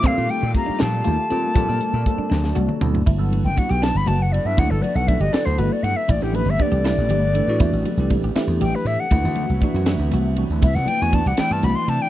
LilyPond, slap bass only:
\new Staff \with { instrumentName = "Slap bass" } { \clef bass \time 6/8 \key d \phrygian \tempo 4. = 79 bes,16 bes,16 r16 bes,16 r8 bes,8 ees,16 r16 bes,8 | bes,16 bes,16 r16 bes,16 r8 d,8 c,16 r16 d,8 | \key g \major g,,16 g,,8 fis,,16 r16 b,,8 g,,16 fis,,8. g,16 | d,16 g,,16 r16 b,,8 g,,16 r16 d,16 g,,16 r16 g,16 r16 |
a,,16 a,,8 g,,16 r16 c,8 a,,16 g,,8. a,16 | e,16 a,,16 r16 c,8 a,,16 r16 e,16 a,,16 r16 a,16 r16 | d,16 d,8 c,16 r16 fis,8 d,16 c,8. d,16 | c,16 c,16 r16 e,8 c,16 r16 g,16 c,16 r16 c16 r16 | }